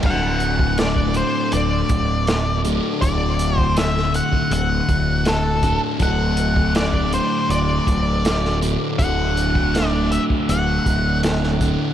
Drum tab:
CC |x---------------|----------------|----------------|----------------|
HH |--x-x-x-x-x-x-x-|x-x-x-x-x-x-x-x-|x-x-x-x-x-x-x-x-|x-x-x-x-x-x-x-x-|
SD |----o-------o---|----oo------o---|----o-------oo--|----o-------oo--|
BD |o--o-o----o-----|o--o---o--o---o-|o--o-o----o-----|o--o---o--o---o-|